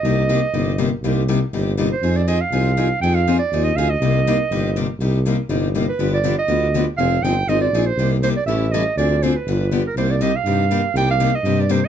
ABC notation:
X:1
M:4/4
L:1/8
Q:"Swing" 1/4=242
K:Cm
V:1 name="Clarinet"
e6- e z | z6 z c- | c d e f4- f | g f2 d2 e f e- |
e6- e z | z6 z =B- | =B d2 e4 z | f2 g2 e d2 c- |
c z c d =e2 _e2 | d2 c =B4 _B | c d e f4- f | g f2 e2 d c e |]
V:2 name="Steel-string acoustic guitar"
[C,G,B,EG] z [C,G,B,EG] z [C,G,B,EG] z [C,G,B,EG] z | [C,G,B,EG] z [C,G,B,EG] z [C,G,B,EG] z [C,G,B,EG] z | [F,CEA] z [F,CEA] z [F,CEA] z [F,CEA] z | [F,CEA] z [F,CEA] z [F,CEA] z [F,CEA] z |
[C,G,B,EG] z [C,G,B,EG] z [C,G,B,EG] z [C,G,B,EG] z | [C,G,B,EG] z [C,G,B,EG] z [C,G,B,EG] z [C,G,B,EG] z | [D,F,=B,DG] z [D,F,B,DG] z [D,F,B,DG] z [D,F,B,DG] z | [F,CEA] z [F,CEA] z [F,CEA] z [F,CEA] z |
[C,G,B,EG] z [C,G,B,EG] z [=E,G,^C=E=A] z [E,G,CEA] z | [D,F,CDA] z [D,F,CDA] z [D,F,=B,DG] z [D,F,B,DG] z | [C,G,B,EG] z [C,G,B,EG] z [C,G,B,EG] z [C,G,B,EG] z | [C,G,B,EG] z [C,G,B,EG] z [C,G,B,EG] z [C,G,B,EG] z |]
V:3 name="Tuba" clef=bass
C,,4 G,,,4 | C,,4 G,,,4 | F,,4 C,,4 | F,,4 E,,2 D,,2 |
C,,4 G,,,4 | C,,4 G,,,4 | G,,,4 D,,4 | F,,,2 G,,,2 A,,,2 B,,,2 |
C,,4 =A,,,4 | D,,4 G,,,4 | C,,4 G,,4 | C,,4 G,,4 |]